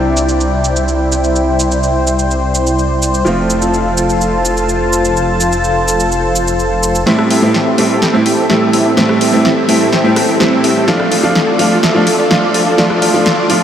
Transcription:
Already playing: detuned saw bass C2, grand piano C3 G3 C4 D4 E4, analog synth pad E4 C5 D5 G5
0.17 cabasa
0.29 cabasa
0.41 cabasa
0.64 cabasa
0.76 cabasa
0.88 cabasa
1.12 cabasa
1.24 cabasa
1.36 cabasa
1.59 cabasa
1.71 cabasa
1.83 cabasa
2.07 cabasa
2.19 cabasa
2.31 cabasa
2.55 cabasa
2.67 cabasa
2.79 cabasa
3.02 cabasa
3.14 cabasa
3.25 detuned saw bass F1, grand piano F3 A3 C4 F4, analog synth pad F4 A4 A5, cabasa
3.50 cabasa
3.62 cabasa
3.74 cabasa
3.98 cabasa
4.09 cabasa
4.21 cabasa
4.45 cabasa
4.57 cabasa
4.69 cabasa
4.93 cabasa
5.05 cabasa
5.17 cabasa
5.40 cabasa
5.52 cabasa
5.64 cabasa
5.88 cabasa
6.00 cabasa
6.12 cabasa
6.36 cabasa
6.47 cabasa
6.59 cabasa
6.83 cabasa
6.95 cabasa
7.06 detuned saw bass A1, grand piano A2 G3 A3 C4 E4, supersaw synth C4 E4 G4 A4 E5, analog synth pad G4 C5 E5 A5, snare
7.19 cross-stick
7.30 detuned saw bass A1, supersaw synth C4 E4 G4 A4 E5, open hi-hat
7.42 detuned saw bass A1, grand piano A2 G3 A3 C4 E4, supersaw synth C4 E4 G4 A4 E5
7.54 detuned saw bass A1, supersaw synth C4 E4 G4 A4 E5, snare
7.78 detuned saw bass A1, grand piano A2 G3 A3 C4 E4, supersaw synth C4 E4 G4 A4 E5, open hi-hat
7.90 detuned saw bass A1, supersaw synth C4 E4 G4 A4 A5
8.02 detuned saw bass A1, supersaw synth C4 E4 G4 A4 G5, snare
8.13 grand piano A2 G3 A3 C4 E4
8.26 detuned saw bass A1, supersaw synth C4 E4 G4 A4 G5, open hi-hat
8.38 detuned saw bass A1, supersaw synth C4 E4 G4 A4 E5
8.49 detuned saw bass A1, grand piano A2 G3 A3 C4 E4, supersaw synth C4 E4 G4 A4 E5, snare
8.73 detuned saw bass A1, supersaw synth C4 E4 G4 A4 E5, open hi-hat
8.85 detuned saw bass A1, supersaw synth C4 E4 G4 A4 E5
8.96 detuned saw bass A1, grand piano A2 G3 A3 C4 E4, supersaw synth C4 E4 G4 A4 E5, snare
9.09 cross-stick
9.21 detuned saw bass A1, supersaw synth C4 E4 G4 A4 E5, open hi-hat
9.32 detuned saw bass A1, grand piano A2 G3 A3 C4 E4, supersaw synth C4 E4 G4 A4 E5
9.45 detuned saw bass A1, supersaw synth C4 E4 G4 A4 E5, snare
9.68 detuned saw bass A1, grand piano A2 G3 A3 C4 E4, supersaw synth C4 E4 G4 A4 E5, open hi-hat
9.81 detuned saw bass A1, supersaw synth C4 E4 G4 A4 A5
9.92 detuned saw bass A1, supersaw synth C4 E4 G4 A4 G5, snare
10.04 grand piano A2 G3 A3 C4 E4
10.16 detuned saw bass A1, supersaw synth C4 E4 G4 A4 G5, cross-stick, open hi-hat
10.28 detuned saw bass A1, supersaw synth C4 E4 G4 A4 E5
10.39 detuned saw bass A1, grand piano A2 G3 A3 C4 E4, supersaw synth C4 E4 G4 A4 E5, snare
10.64 detuned saw bass A2, supersaw synth C4 E4 G4 A4 E5, open hi-hat
10.76 detuned saw bass A1, supersaw synth C4 E4 G4 A4 E5
10.87 detuned saw bass D2, grand piano F3 A3 D4 F4, supersaw synth F4 A4 D5, analog synth pad A4 D5 F5 D6, snare
11.00 cross-stick
11.11 detuned saw bass D2, supersaw synth F4 A4 D5, open hi-hat
11.23 detuned saw bass D2, grand piano F3 A3 D4 F4, supersaw synth F4 A4 D5
11.35 detuned saw bass D2, supersaw synth F4 A4 D5, snare
11.58 detuned saw bass D2, grand piano F3 A3 D4 F4, supersaw synth F4 A4 D5, open hi-hat
11.71 detuned saw bass D2, supersaw synth F4 A4 F5
11.83 detuned saw bass D2, supersaw synth F4 A4 E5, snare
11.94 grand piano F3 A3 D4 F4
12.07 detuned saw bass D2, supersaw synth F4 A4 E5, open hi-hat
12.19 detuned saw bass D2, supersaw synth F4 A4 D5
12.30 detuned saw bass D2, grand piano F3 A3 D4 F4, supersaw synth F4 A4 D5, snare
12.54 detuned saw bass D2, supersaw synth F4 A4 D5, open hi-hat
12.66 detuned saw bass D2, supersaw synth F4 A4 D5
12.78 detuned saw bass D2, grand piano F3 A3 D4 F4, supersaw synth F4 A4 D5, analog synth pad C6, snare
12.90 cross-stick
13.02 detuned saw bass D2, supersaw synth F4 A4 D5, open hi-hat
13.13 detuned saw bass D2, grand piano F3 A3 D4 F4, supersaw synth F4 A4 D5
13.26 detuned saw bass D2, supersaw synth F4 A4 D5, snare
13.49 detuned saw bass D2, grand piano F3 A3 D4 F4, supersaw synth F4 A4 D5, open hi-hat

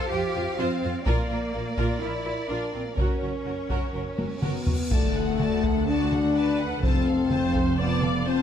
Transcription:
Already playing: french horn section F4 C5, cello section A4, violin section F5
0.10 double bass section F2, viola section F4, cello section G4, violin section C5
0.34 double bass section F2, viola section F4, violin section C5
0.58 double bass section F2, cello section C4, viola section F4, violin section C5
0.82 double bass section F2, viola section F4, violin section C5
1.05 double bass section A#1, cello section A#3, viola section F4, french horn section A#4 D5, violin section A#4 D5, taiko
1.30 double bass section A#1, viola section F4, violin section A#4
1.54 double bass section A#1, viola section F4, violin section A#4
1.77 double bass section A#1, viola section F4, violin section A#4, taiko
2.01 double bass section A#1, cello section E4, viola section F4, violin section A#4
2.24 double bass section A#1, viola section F4, violin section A#4
2.49 double bass section A#1, cello section D4, viola section F4, violin section A#4
2.73 double bass section A#1, cello section C4, viola section F4, violin section A#4
2.87 cello section A#3
2.96 double bass section F#1, cello section C#4, viola section F#4, violin section A#4 C#5, french horn section C#5, taiko, cymbal swell
3.21 double bass section F#1, viola section F#4, violin section A#4
3.46 double bass section F#1, viola section F#4, violin section A#4
3.70 double bass section F#1, viola section F#4, violin section A#4, taiko
3.94 double bass section F#1, viola section F#4, violin section A#4
4.17 double bass section F#1, viola section F#4, violin section A#4, taiko high
4.42 double bass section F#1, french horn section B3, viola section F#4, violin section A#4, taiko mid
4.67 double bass section F#1, viola section F#4, violin section A#4, taiko low
4.91 cello section D2, double bass section D2, french horn section A3, violin section F#4 D5 A5, taiko, impact
5.15 violin section A4 F#5
5.39 violin section F#4 D5 A5, taiko mid
5.63 violin section A4 F#5, taiko
5.87 french horn section D4, viola section F#4, violin section F#4 D5 A5
6.12 violin section A4 F#5, taiko mid
6.35 violin section F#4 D5 A5, viola section B4
6.60 violin section A4 F#5
6.82 double bass section F1, cello section F2, french horn section C4, violin section F4 C5 A5, viola section A4, taiko
7.06 violin section A4 F5
7.30 violin section F4 C5 A5, viola section C5, taiko mid
7.54 violin section A4 F5, taiko
7.78 french horn section B3, violin section F4 C5 A5, viola section D5
8.01 violin section A4 F5, taiko mid
8.25 french horn section C4, violin section F4 C5 A5, viola section C5

